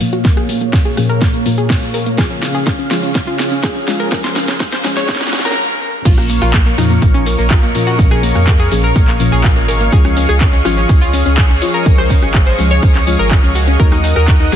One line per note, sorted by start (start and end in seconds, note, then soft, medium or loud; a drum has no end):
0.00 2.14 A#2 medium
0.00 0.22 A#2 medium
0.00 0.22 F3 medium
0.00 2.14 A#3 medium
0.00 0.09 A#3 medium
0.00 0.22 A#3 medium
0.00 0.22 C#4 medium
0.00 0.22 F4 medium
0.00 2.14 C#5 medium
0.00 2.14 F5 medium
0.00 open hi-hat loud
0.13 0.21 F#4 medium
0.13 closed hi-hat soft
0.25 0.94 A#2 medium
0.25 0.94 F3 medium
0.25 0.33 A#3 medium
0.25 0.94 A#3 medium
0.25 0.94 C#4 medium
0.25 0.94 A#4 medium
0.25 kick loud
0.25 snare medium
0.25 closed hi-hat medium
0.37 0.45 G#4 medium
0.37 cross-stick medium
0.37 closed hi-hat soft
0.49 0.58 A#3 medium
0.49 open hi-hat loud
0.61 0.70 A#3 medium
0.61 closed hi-hat soft
0.73 0.82 A#3 medium
0.73 kick loud
0.73 snare medium
0.73 closed hi-hat medium
0.85 0.94 G#4 medium
0.85 closed hi-hat soft
0.97 1.43 A#2 medium
0.97 1.43 F3 medium
0.97 1.06 A#3 medium
0.97 1.43 A#3 medium
0.97 1.43 C#4 medium
0.97 1.43 G#4 medium
0.97 cross-stick medium
0.97 open hi-hat loud
1.09 1.18 A#4 loud
1.09 closed hi-hat soft
1.21 1.30 A#3 medium
1.21 kick loud
1.21 snare medium
1.21 closed hi-hat medium
1.34 1.42 A#3 medium
1.34 closed hi-hat soft
1.46 2.15 A#2 medium
1.46 2.15 F3 medium
1.46 1.54 A#3 medium
1.46 2.15 A#3 medium
1.46 2.15 C#4 medium
1.46 2.15 F4 medium
1.46 open hi-hat loud
1.58 1.66 G#4 medium
1.58 closed hi-hat soft
1.70 1.79 A#3 medium
1.70 kick loud
1.70 snare medium
1.70 closed hi-hat medium
1.82 1.91 A#3 medium
1.82 closed hi-hat soft
1.94 2.03 A#4 medium
1.94 open hi-hat loud
2.06 2.15 A#3 medium
2.06 closed hi-hat soft
2.18 5.54 C#3 medium
2.18 2.88 F3 medium
2.18 2.88 G#3 medium
2.18 5.54 C#4 medium
2.18 2.88 C#4 medium
2.18 2.88 F4 medium
2.18 2.27 G#4 medium
2.18 5.54 G#4 medium
2.18 5.54 F5 medium
2.18 kick loud
2.18 snare medium
2.18 closed hi-hat medium
2.30 2.39 C#4 medium
2.30 closed hi-hat soft
2.42 2.51 C#4 medium
2.42 snare medium
2.42 open hi-hat loud
2.55 2.63 G#4 medium
2.55 closed hi-hat soft
2.67 2.75 C#4 medium
2.67 kick loud
2.67 snare medium
2.67 closed hi-hat medium
2.79 2.87 C#4 medium
2.79 closed hi-hat soft
2.91 3.85 F3 medium
2.91 3.85 G#3 medium
2.91 3.85 C#4 medium
2.91 3.00 F4 medium
2.91 3.85 F4 loud
2.91 snare medium
2.91 open hi-hat loud
3.03 3.12 C#4 medium
3.03 closed hi-hat soft
3.15 3.24 C#4 medium
3.15 kick loud
3.15 snare medium
3.15 closed hi-hat medium
3.27 3.36 F4 medium
3.27 closed hi-hat soft
3.39 3.48 C#4 medium
3.39 snare medium
3.39 open hi-hat loud
3.51 3.60 C#4 medium
3.51 closed hi-hat soft
3.63 3.72 G#4 medium
3.63 kick loud
3.63 snare medium
3.63 closed hi-hat medium
3.76 3.84 C#4 medium
3.76 closed hi-hat soft
3.88 4.09 F3 medium
3.88 4.09 G#3 medium
3.88 3.96 C#4 medium
3.88 4.09 C#4 medium
3.88 4.09 F4 medium
3.88 snare medium
3.88 open hi-hat loud
4.00 4.08 A#4 medium
4.00 closed hi-hat soft
4.12 4.82 F3 medium
4.12 4.82 G#3 medium
4.12 4.20 C#4 medium
4.12 4.82 C#4 medium
4.12 4.82 A#4 medium
4.12 kick loud
4.12 snare medium
4.12 closed hi-hat medium
4.24 4.33 C5 medium
4.24 snare medium
4.24 closed hi-hat soft
4.36 4.45 C#4 medium
4.36 snare medium
4.36 open hi-hat loud
4.48 4.57 C#4 medium
4.48 snare medium
4.48 closed hi-hat soft
4.60 4.69 C#4 medium
4.60 kick loud
4.60 snare medium
4.60 closed hi-hat medium
4.72 4.81 C5 medium
4.72 snare medium
4.72 closed hi-hat soft
4.84 5.30 F3 medium
4.84 5.30 G#3 medium
4.84 4.93 C#4 medium
4.84 5.30 C#4 medium
4.84 5.30 G#4 loud
4.84 snare loud
4.84 open hi-hat loud
4.97 5.05 C#5 loud
4.97 snare medium
4.97 closed hi-hat soft
5.09 5.17 C#4 medium
5.09 kick loud
5.09 snare loud
5.09 closed hi-hat medium
5.15 snare medium
5.21 5.29 C#4 medium
5.21 snare medium
5.21 closed hi-hat soft
5.27 snare medium
5.33 5.42 C#4 medium
5.33 snare loud
5.33 open hi-hat loud
5.39 snare medium
5.45 5.54 A#4 medium
5.45 snare medium
5.45 closed hi-hat soft
5.51 snare medium
6.05 6.39 A#1 loud
6.05 6.75 A#2 medium
6.05 6.75 F3 medium
6.05 6.75 A#3 medium
6.05 6.75 C#4 medium
6.05 6.75 F4 medium
6.05 6.14 F4 loud
6.05 9.89 A#4 medium
6.05 13.76 C#5 medium
6.05 14.56 D#5 medium
6.05 13.76 F5 medium
6.05 9.89 C#6 medium
6.05 14.56 D#6 medium
6.05 kick loud
6.05 closed hi-hat medium
6.05 crash loud
6.05 shekere medium
6.18 6.26 A#3 medium
6.18 cross-stick medium
6.18 closed hi-hat soft
6.18 shekere soft
6.29 6.38 A#3 medium
6.29 open hi-hat loud
6.29 shekere loud
6.42 6.75 A#1 loud
6.42 6.50 F4 medium
6.42 cross-stick medium
6.42 closed hi-hat soft
6.42 shekere soft
6.53 6.62 A#3 medium
6.53 kick loud
6.53 clap loud
6.53 closed hi-hat medium
6.53 shekere medium
6.66 6.74 A#3 medium
6.66 closed hi-hat soft
6.66 shekere soft
6.78 6.98 F2 medium
6.78 7.72 A#2 medium
6.78 7.72 F3 medium
6.78 7.72 A#3 medium
6.78 7.72 C#4 medium
6.78 6.87 D#4 medium
6.78 7.72 F4 loud
6.78 cross-stick medium
6.78 open hi-hat loud
6.78 shekere medium
6.90 6.99 A#3 medium
6.90 closed hi-hat soft
6.90 shekere soft
7.02 7.35 A#1 loud
7.02 7.11 A#3 medium
7.02 kick loud
7.02 closed hi-hat loud
7.02 shekere soft
7.14 7.23 C#4 medium
7.14 closed hi-hat soft
7.14 shekere soft
7.26 7.35 A#3 medium
7.26 open hi-hat loud
7.26 shekere medium
7.39 7.59 A#1 medium
7.39 7.47 A#3 medium
7.39 closed hi-hat soft
7.39 shekere soft
7.50 7.59 F4 medium
7.50 kick loud
7.50 clap loud
7.50 closed hi-hat loud
7.50 shekere medium
7.63 7.73 A#1 medium
7.63 7.71 A#3 medium
7.63 closed hi-hat soft
7.63 shekere soft
7.75 7.96 A#2 medium
7.75 7.96 F3 medium
7.75 7.83 A#3 medium
7.75 7.96 A#3 medium
7.75 7.96 C#4 medium
7.75 7.96 F4 medium
7.75 open hi-hat loud
7.75 shekere medium
7.87 7.95 F#4 medium
7.87 closed hi-hat soft
7.87 shekere soft
7.99 8.32 A#1 medium
7.99 8.69 A#2 medium
7.99 8.69 F3 medium
7.99 8.08 A#3 medium
7.99 8.69 A#3 medium
7.99 8.69 C#4 medium
7.99 8.69 A#4 medium
7.99 kick loud
7.99 closed hi-hat medium
7.99 shekere medium
8.10 8.20 G#4 loud
8.10 cross-stick medium
8.10 closed hi-hat soft
8.10 shekere soft
8.23 8.32 A#3 medium
8.23 open hi-hat loud
8.23 shekere medium
8.35 8.68 F2 loud
8.35 8.44 A#3 medium
8.35 cross-stick medium
8.35 closed hi-hat soft
8.35 shekere soft
8.47 8.56 A#3 medium
8.47 kick loud
8.47 clap loud
8.47 closed hi-hat medium
8.47 shekere medium
8.60 8.68 G#4 medium
8.60 closed hi-hat soft
8.60 shekere soft
8.71 8.92 A#1 loud
8.71 9.17 A#2 medium
8.71 9.17 F3 medium
8.71 8.80 A#3 medium
8.71 9.17 A#3 medium
8.71 9.17 C#4 medium
8.71 9.17 G#4 loud
8.71 open hi-hat loud
8.71 shekere medium
8.84 8.92 A#4 loud
8.84 closed hi-hat soft
8.84 shekere soft
8.96 9.29 A#1 medium
8.96 9.04 A#3 medium
8.96 kick loud
8.96 closed hi-hat medium
8.96 shekere medium
9.08 9.16 A#3 medium
9.08 clap soft
9.08 closed hi-hat soft
9.08 shekere soft
9.20 9.90 A#2 medium
9.20 9.90 F3 medium
9.20 9.29 A#3 medium
9.20 9.90 A#3 medium
9.20 9.90 C#4 medium
9.20 9.90 F4 medium
9.20 open hi-hat loud
9.20 shekere medium
9.32 9.52 A#1 medium
9.32 9.41 G#4 medium
9.32 closed hi-hat soft
9.32 shekere soft
9.44 9.53 A#3 medium
9.44 kick loud
9.44 clap loud
9.44 closed hi-hat loud
9.44 shekere soft
9.56 9.89 G#1 medium
9.56 9.65 A#3 medium
9.56 closed hi-hat soft
9.56 shekere soft
9.68 9.77 A#4 medium
9.68 open hi-hat loud
9.68 shekere medium
9.80 9.89 A#3 medium
9.80 closed hi-hat soft
9.80 shekere soft
9.92 10.26 C#2 loud
9.92 10.62 F3 medium
9.92 10.62 G#3 medium
9.92 10.62 C#4 medium
9.92 10.62 F4 medium
9.92 10.01 G#4 loud
9.92 13.76 G#4 medium
9.92 13.76 C#6 medium
9.92 kick loud
9.92 closed hi-hat medium
9.92 shekere medium
10.04 10.13 C#4 medium
10.04 cross-stick medium
10.04 closed hi-hat soft
10.04 shekere soft
10.17 10.25 C#4 medium
10.17 open hi-hat loud
10.17 shekere loud
10.29 10.62 C#2 loud
10.29 10.37 G#4 medium
10.29 cross-stick medium
10.29 closed hi-hat soft
10.29 shekere soft
10.41 10.50 C#4 medium
10.41 kick loud
10.41 clap loud
10.41 closed hi-hat medium
10.41 shekere medium
10.53 10.62 C#4 medium
10.53 closed hi-hat soft
10.53 shekere soft
10.65 10.85 G#1 medium
10.65 11.59 F3 loud
10.65 11.59 G#3 medium
10.65 11.59 C#4 medium
10.65 10.74 F4 loud
10.65 11.59 F4 loud
10.65 cross-stick medium
10.65 open hi-hat loud
10.65 shekere medium
10.77 10.86 C#4 medium
10.77 closed hi-hat soft
10.77 shekere soft
10.89 11.23 C#2 loud
10.89 10.98 C#4 medium
10.89 kick loud
10.89 closed hi-hat medium
10.89 shekere medium
11.01 11.10 F4 medium
11.01 closed hi-hat soft
11.01 shekere soft
11.13 11.22 C#4 medium
11.13 open hi-hat loud
11.13 shekere medium
11.26 11.46 C#2 medium
11.26 11.34 C#4 medium
11.26 closed hi-hat soft
11.26 shekere soft
11.38 11.46 G#4 medium
11.38 kick loud
11.38 clap loud
11.38 closed hi-hat medium
11.38 shekere medium
11.50 11.60 C#2 medium
11.50 11.58 C#4 medium
11.50 closed hi-hat soft
11.50 shekere soft
11.61 11.83 F3 medium
11.61 11.83 G#3 medium
11.61 11.71 C#4 medium
11.61 11.83 C#4 medium
11.61 11.83 F4 medium
11.61 open hi-hat loud
11.61 shekere medium
11.74 11.83 A#4 medium
11.74 closed hi-hat soft
11.74 shekere soft
11.86 12.19 C#2 medium
11.86 12.56 F3 medium
11.86 12.56 G#3 medium
11.86 11.95 C#4 medium
11.86 12.56 C#4 medium
11.86 12.56 A#4 medium
11.86 kick loud
11.86 closed hi-hat medium
11.86 shekere medium
11.98 12.07 C5 loud
11.98 cross-stick medium
11.98 closed hi-hat soft
11.98 shekere soft
12.10 12.19 C#4 medium
12.10 kick medium
12.10 open hi-hat loud
12.10 shekere medium
12.22 12.56 G#1 loud
12.22 12.31 C#4 medium
12.22 cross-stick medium
12.22 closed hi-hat soft
12.22 shekere soft
12.34 12.43 C#4 medium
12.34 kick loud
12.34 clap loud
12.34 closed hi-hat medium
12.34 shekere medium
12.47 12.55 C5 medium
12.47 closed hi-hat soft
12.47 shekere soft
12.58 12.79 C#2 loud
12.58 13.04 F3 medium
12.58 13.04 G#3 medium
12.58 12.67 C#4 medium
12.58 13.04 C#4 medium
12.58 13.04 G#4 loud
12.58 open hi-hat loud
12.58 shekere medium
12.71 12.79 C#5 loud
12.71 closed hi-hat soft
12.71 shekere soft
12.83 13.16 C#2 medium
12.83 12.91 C#4 medium
12.83 kick loud
12.83 closed hi-hat medium
12.83 shekere medium
12.95 13.04 C#4 medium
12.95 clap soft
12.95 closed hi-hat soft
12.95 shekere soft
13.07 13.77 F3 medium
13.07 13.77 G#3 medium
13.07 13.16 C#4 medium
13.07 13.77 C#4 medium
13.07 13.77 F4 medium
13.07 open hi-hat loud
13.07 shekere medium
13.19 13.40 G#1 medium
13.19 13.28 A#4 loud
13.19 closed hi-hat soft
13.19 shekere soft
13.31 13.40 C#4 medium
13.31 kick loud
13.31 clap loud
13.31 closed hi-hat medium
13.31 shekere medium
13.43 13.77 C#2 loud
13.43 13.52 C#4 medium
13.43 closed hi-hat soft
13.43 shekere soft
13.55 13.64 F#4 medium
13.55 open hi-hat loud
13.55 shekere loud
13.68 13.76 C#4 medium
13.68 closed hi-hat soft
13.68 shekere soft
13.79 14.13 D#2 loud
13.79 14.49 F#3 medium
13.79 14.49 A#3 medium
13.79 14.49 D#4 medium
13.79 14.49 F#4 medium
13.79 13.88 A#4 loud
13.79 14.56 A#4 medium
13.79 14.56 D#5 medium
13.79 14.56 F#5 medium
13.79 14.56 D#6 medium
13.79 kick loud
13.79 closed hi-hat medium
13.79 shekere soft
13.92 14.00 D#4 medium
13.92 cross-stick medium
13.92 closed hi-hat soft
13.92 shekere soft
14.04 14.12 D#4 medium
14.04 open hi-hat loud
14.04 shekere medium
14.16 14.49 D#2 loud
14.16 14.24 A#4 medium
14.16 cross-stick medium
14.16 closed hi-hat soft
14.16 shekere soft
14.28 14.37 D#4 medium
14.28 kick loud
14.28 clap loud
14.28 closed hi-hat medium
14.28 shekere medium
14.40 14.49 D#4 medium
14.40 closed hi-hat soft
14.40 shekere soft
14.52 14.56 A#1 medium
14.52 14.56 F#3 medium
14.52 14.56 A#3 medium
14.52 14.56 D#4 medium
14.52 14.56 F#4 loud
14.52 14.56 G#4 medium
14.52 cross-stick medium
14.52 open hi-hat loud
14.52 shekere loud